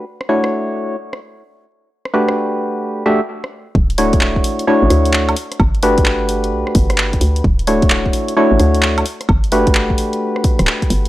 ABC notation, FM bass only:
X:1
M:4/4
L:1/16
Q:"Swing 16ths" 1/4=130
K:D
V:1 name="FM bass" clef=bass
z16 | z16 | D,,,6 z3 A,,, D,,4 z2 | G,,,8 B,,, z G,,,4 D,,2 |
D,,,6 z3 A,,, D,,4 z2 | G,,,6 z4 z D,,, z2 G,,,2 |]